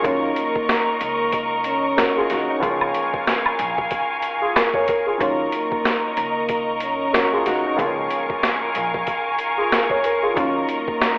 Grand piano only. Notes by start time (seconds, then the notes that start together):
Already playing: G#4
0.02 D#3 F#3 A#3 C#4
0.06 F4
1.97 F#4 A#4
2.17 F4 G#4
2.30 D#4 F#4
2.50 D#4
2.60 C#2 F3 G#3 A#3 B3
2.64 F4
2.70 C#4
4.42 F4 G#4
4.56 A#4
4.75 A#4 C#5
4.89 A#4
5.06 F4 G#4
5.18 D#3 F#3 A#3 C#4
5.22 F4
7.13 F#4 A#4
7.33 F4 G#4
7.46 D#4 F#4
7.66 D#4
7.76 C#2 F3 G#3 A#3 B3
7.80 F4
7.86 C#4
9.58 F4 G#4
9.72 A#4
9.91 A#4 C#5
10.05 A#4
10.23 F4 G#4
10.34 D#3 F#3 A#3 C#4
10.38 F4